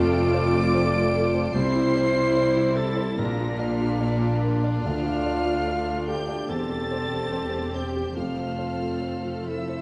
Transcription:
Already playing: double bass section F1, felt piano F2, cello section F2, french horn section A3 F4, viola section A3 F4, violin section A4 C5 D7, clarinet D5, flute D6
0.13 felt piano F4
0.34 felt piano C5
0.54 felt piano F4
0.75 felt piano C5
0.94 felt piano F4
1.15 felt piano A4
1.35 felt piano C5
1.53 felt piano C2, double bass section C2, cello section C3, viola section G3 E4, french horn section G3 E4, violin section E4 C7, clarinet C5, flute C6
1.76 felt piano E4
1.96 felt piano C5
2.16 felt piano E4
2.36 felt piano C5
2.57 felt piano E4
2.76 felt piano G4, clarinet A4, flute A5, violin section A6
2.97 felt piano C5
3.18 felt piano A#1, double bass section A#1, cello section A#2, viola section A#3 D4, french horn section A#3 D4, violin section F4 D5 A#6, clarinet A#4, flute A#5
3.38 felt piano F4
3.58 clarinet F4, felt piano D5, flute F5, violin section F6
3.80 felt piano F4
4.00 felt piano D5
4.22 felt piano F4
4.43 felt piano A#4
4.64 felt piano D5
4.82 cello section D2, felt piano D2, double bass section D2, viola section A3, french horn section A3, clarinet F4, flute F5, violin section F6
5.05 felt piano F4
5.26 felt piano D5
5.46 felt piano F4
5.67 felt piano D5
5.87 felt piano F4
6.07 clarinet G4, felt piano A4, flute G5, violin section G6
6.28 felt piano D5
6.48 double bass section E1, felt piano E2, cello section E2, french horn section G3 C4, viola section C4 G4, violin section G4 C5 A6, clarinet A4, flute A5
6.70 felt piano G4
6.91 felt piano C5
7.12 felt piano G4
7.33 felt piano C5
7.54 felt piano G4
7.74 clarinet G4, felt piano C5, flute G5, violin section G6
7.96 felt piano G4
8.15 double bass section F1, felt piano F2, cello section F2, viola section F3 A3, french horn section A3, clarinet F4, violin section A4 F6, flute F5
8.37 felt piano F4
8.59 felt piano C5
8.80 felt piano F4
9.02 felt piano C5
9.24 felt piano F4
9.46 clarinet E4, felt piano A4, flute E5, violin section E6
9.69 felt piano C5

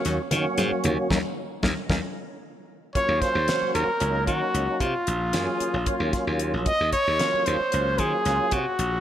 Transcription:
Already playing: tonewheel organ F#3 A#3 C#4 F#4
0.05 slap bass D#2, snare, closed hi-hat, low conga
0.31 slap bass D#3, tonewheel organ F#3 A#3 C#4 F#4, snare, closed hi-hat, low conga
0.45 low conga
0.58 slap bass G#2, snare, closed hi-hat, high conga, low conga
0.72 muted slap bass stroke
0.84 slap bass D#2, closed hi-hat, low conga
1.10 slap bass D#2, tonewheel organ A#3 C#4 D#4, kick, snare, high conga
1.63 slap bass D#2, tonewheel organ A#3 C#4 D#4, kick, snare, high conga
1.90 slap bass D#2, tonewheel organ A#3 C#4 D#4, kick, snare, high conga
2.95 tonewheel organ F#3 A#3 C#4 F4, trumpet C#5, muted slap bass stroke, kick, closed hi-hat
3.08 slap bass D#2
3.21 trumpet C5, kick, snare, closed hi-hat
3.35 slap bass D#2
3.48 tonewheel organ F#3 A#3 C#4 F#4, snare, closed hi-hat
3.62 muted slap bass stroke
3.75 slap bass D#2, trumpet A#4, closed hi-hat
3.88 muted slap bass stroke
4.00 slap bass C#2, tonewheel organ F#3 A#3 C#4 D#4, closed hi-hat
4.27 slap bass D#3, trumpet F#4, kick, closed hi-hat
4.54 slap bass C#2, closed hi-hat
4.80 slap bass C3, trumpet F4, kick, closed hi-hat
5.07 slap bass A#1, closed hi-hat
5.33 slap bass F#2, tonewheel organ F#3 A#3 C#4 G#4, snare, closed hi-hat
5.60 muted slap bass stroke, closed hi-hat
5.74 slap bass A#1
5.86 tonewheel organ F#3 A#3 C#4 F4, muted slap bass stroke, kick, closed hi-hat
6.00 slap bass D#2
6.13 kick, snare, closed hi-hat
6.27 slap bass D#2
6.39 closed hi-hat
6.54 slap bass A#1
6.66 trumpet D#5, muted slap bass stroke, kick, closed hi-hat
6.80 slap bass D#2
6.92 trumpet C#5, kick, closed hi-hat
7.07 slap bass D#2
7.18 tonewheel organ F#3 A#3 C#4 F4, snare, closed hi-hat
7.34 muted slap bass stroke
7.46 slap bass D#2, trumpet C5, closed hi-hat
7.60 muted slap bass stroke
7.72 slap bass C#2, tonewheel organ F#3 A#3 C#4 F4, closed hi-hat
7.98 slap bass D#3, trumpet G#4, kick, closed hi-hat
8.25 slap bass C#2, snare, closed hi-hat
8.51 slap bass C3, trumpet F#4, kick, closed hi-hat
8.79 slap bass A#1, closed hi-hat

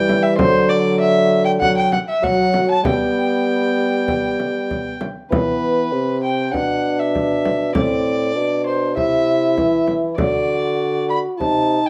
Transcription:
Already playing: bassoon E3, trombone G3, violin G5
0.09 frame drum
0.23 violin E5
0.38 bassoon D3, trombone F#3, violin C5, frame drum
0.69 violin D5
1.00 violin E5
1.45 violin G5
1.61 trombone F#3, violin F#5, frame drum
1.77 violin G5
1.92 violin F#5, frame drum
2.09 violin E5
2.22 trombone F#3, bassoon F#3, violin F#5, frame drum
2.54 frame drum
2.71 violin A5
2.84 bassoon G3, trombone B3, violin G5, frame drum
4.08 frame drum
4.40 frame drum
4.71 frame drum
5.01 frame drum
5.31 bassoon E3, trombone B3, violin B4, frame drum
5.92 bassoon C3, trombone C4
6.23 violin G5
6.53 bassoon B2, trombone D4, violin F#5, frame drum
6.99 violin E5
7.15 frame drum
7.45 frame drum
7.75 bassoon A2, trombone C4, violin D5, frame drum
8.36 bassoon B2, trombone D4
8.66 violin C5
8.96 bassoon C3, trombone E4, violin E5, frame drum
9.57 bassoon E3, frame drum
9.88 frame drum
10.17 bassoon D3, trombone F#4, violin D5, frame drum
11.10 violin B5
11.40 bassoon C3, trombone D#4, violin A5, frame drum
11.86 violin G5

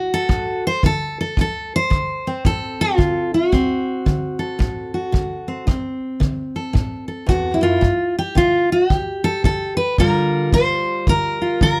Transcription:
Already playing: steel-string acoustic guitar D3 F#4
0.14 steel-string acoustic guitar A4
0.29 steel-string acoustic guitar A2, kick
0.67 steel-string acoustic guitar C5
0.83 steel-string acoustic guitar D3 A4, kick
1.21 steel-string acoustic guitar A4
1.37 steel-string acoustic guitar D2 A4, kick
1.76 steel-string acoustic guitar C5
1.90 steel-string acoustic guitar D3, kick
2.27 steel-string acoustic guitar C4
2.45 steel-string acoustic guitar A2 A4, kick
2.81 steel-string acoustic guitar F4
2.98 steel-string acoustic guitar D3, kick
3.34 steel-string acoustic guitar F#4
3.52 steel-string acoustic guitar D2 C4, kick
4.06 steel-string acoustic guitar D3, kick
4.39 steel-string acoustic guitar A4
4.59 steel-string acoustic guitar A2, kick
4.94 steel-string acoustic guitar F#4
5.12 steel-string acoustic guitar D3, kick
5.48 steel-string acoustic guitar C4
5.67 steel-string acoustic guitar D2 C4, kick
6.20 steel-string acoustic guitar D3, kick
6.56 steel-string acoustic guitar A4
6.73 steel-string acoustic guitar A2, kick
7.08 steel-string acoustic guitar A4
7.26 steel-string acoustic guitar E2 F#4, kick
7.54 steel-string acoustic guitar E4
7.61 steel-string acoustic guitar F#2 F4
7.81 steel-string acoustic guitar G2, kick
8.19 steel-string acoustic guitar G4
8.35 steel-string acoustic guitar D3 F4, kick
8.72 steel-string acoustic guitar F#4
8.90 steel-string acoustic guitar D3 G4, kick
9.24 steel-string acoustic guitar A4
9.44 steel-string acoustic guitar D3 A4, kick
9.77 steel-string acoustic guitar B4
9.98 steel-string acoustic guitar G2 D3 G3 F4 A#4, kick
10.53 steel-string acoustic guitar D3 C5, kick
11.07 steel-string acoustic guitar D3 A#4, kick
11.42 steel-string acoustic guitar F4
11.61 steel-string acoustic guitar D3 A#4, kick

